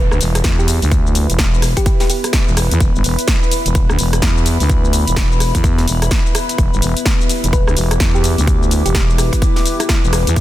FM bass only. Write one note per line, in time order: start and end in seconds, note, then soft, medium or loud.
0.11 0.19 D2 loud
0.21 0.43 E1 loud
0.44 0.80 E2 loud
0.82 1.27 D2 loud
1.29 1.74 E1 loud
2.48 2.69 E1 medium
2.71 2.79 E2 loud
2.81 2.93 E1 loud
2.95 3.03 G1 loud
3.04 3.16 E1 loud
3.66 3.87 E1 loud
3.89 3.97 D2 loud
3.99 4.21 E1 loud
4.22 4.58 E2 medium
4.60 5.05 D2 loud
5.08 5.53 E1 loud
5.55 5.86 E2 loud
5.88 6.10 E1 loud
6.58 6.71 E1 loud
6.73 6.81 G1 loud
6.82 6.94 E1 loud
7.44 7.65 E1 loud
7.67 7.75 D2 loud
7.76 7.99 E1 loud
8.00 8.36 E2 medium
8.38 8.83 D2 loud
8.85 9.30 E1 loud
10.03 10.25 E1 loud
10.27 10.35 E2 loud
10.36 10.40 E1 loud